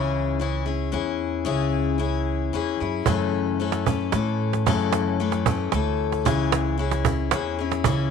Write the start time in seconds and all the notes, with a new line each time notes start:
Already playing: C#2 C#3 E3 C#4 E4 G#4
0.40 E3 C#4 E4 G#4
0.66 C#4 E4 G#4
0.92 E2 E3 C#4 E4 G#4
1.45 C#2 C#3 E3 C#4 E4 G#4
1.98 E3 C#4 E4 G#4
2.53 E2 E3 C#4 E4 G#4
2.80 F#2 C#4 E4 G#4
3.06 F#2 C#3 E3 A3 C#4 A4, cajon bass
3.20 cajon slap
3.60 E3 A3 C#4 A4
3.72 cajon slap
3.86 E3 A3 C#4 A4, cajon bass
3.99 cajon slap
4.12 A2 E3 A3 C#4 A4, cajon slap
4.53 cajon slap
4.66 F#2 C#3 E3 A3 C#4 A4, cajon bass
4.80 cajon slap
4.93 cajon slap
5.20 E3 A3 C#4 A4
5.32 cajon slap
5.46 E3 A3 C#4 A4, cajon bass
5.59 cajon slap
5.72 D2 E3 A3 C#4 A4, cajon slap
6.12 cajon slap
6.25 C#2 C#3 E3 C#4 E4 G#4, cajon bass
6.52 cajon slap
6.78 E3 C#4 E4 G#4
6.91 cajon slap
7.05 C#4 E4 G#4, cajon bass
7.19 cajon slap
7.31 E2 E3 C#4 E4 G#4, cajon slap
7.59 C#4 E4 G#4
7.72 cajon slap
7.84 C#2 C#3 E3 C#4 E4 G#4, cajon bass
7.98 cajon slap